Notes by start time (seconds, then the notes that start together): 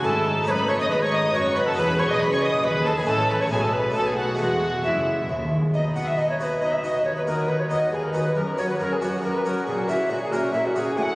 Already playing: A3 C#4 F#4
0.04 G#1 G#2 E4 A4 A5
0.26 D#4
0.42 A3 B3 D#4
0.47 F#1 F#2 B4 C#5 B5
0.68 C#5 C#6
0.79 D#5 D#6
0.90 G#1 G#2 D#4 B4 B5
1.01 C#5 C#6
1.12 D#5 D#6
1.33 F#1 F#2 F#4 C#5 C#6
1.56 B4 B5
1.66 A4 A5
1.72 G#3 B3 E4
1.76 E1 E2 G#4 B4 B5
1.99 C#5 C#6
2.09 D#5 D#6
2.20 F#1 F#2 B4 B5
2.31 C#5 C#6
2.42 D#5 D#6
2.63 D#2 G#4 B4 B5
2.86 A4 A5
2.97 G#4 G#5
3.02 A3 C#4 E4
3.07 A1 A2 C#4 A4 A5
3.29 B4 B5
3.40 C#5 C#6
3.46 G#3 B3 E4
3.50 B1 B2 G#3 G#4 G#5
3.62 A4 A5
3.73 B4 B5
3.90 A3 B3 D#4
3.95 B1 B2 A3 A4 A5
4.06 G#4 G#5
4.17 F#4 F#5
4.35 G#3 B3 E4
4.39 E1 E2 F#4 F#5
4.84 F#1 F#2 G#3 E4 E5
5.29 D#2
5.73 B2 D#4 D#5 B5
5.95 B2 B3 F#4 F#5 D#6
6.07 E5
6.17 B2 D#4 D#5 B5
6.29 C#5
6.39 B2 B3 F#4 B4 C#5 D#6
6.61 B2 D#4 D#5 B5
6.73 E5
6.82 B2 B3 F#4 D#5 D#6
7.04 D#2 D#4 C#5 B5
7.16 B4
7.26 D#2 B3 F#4 A#4 D#6
7.48 D#2 D#4 B4 B5
7.59 C#5
7.69 D#2 B3 F#4 D#5 D#6
7.92 D#2 D#4 G#4 B5
8.03 A#4
8.13 D#2 B3 F#4 B4 D#6
8.36 F#2 A#4 C#6
8.58 F#2 C#4 F#4 C#5 A#5
8.69 B4
8.80 F#2 A#4 C#6
8.91 G#4
9.01 F#2 C#4 F#4 A#5
9.23 F#2 A#4 C#6
9.34 B4
9.44 F#2 C#4 F#4 A#4 A#5
9.66 A#2 G#4 A#4 C#6
9.78 F#4
9.88 A#2 C#4 E4 F#4 E5 A#5
10.10 A#2 F#4 A#4 C#6
10.21 G#4
10.31 A#2 C#4 F#4 A#4 A#5
10.53 A#2 E4 A#4 E5 C#6
10.65 F#4
10.75 A#2 C#4 F#4 G#4 A#5
10.96 A2 A4 F#5 G#5 C#6
11.02 F#5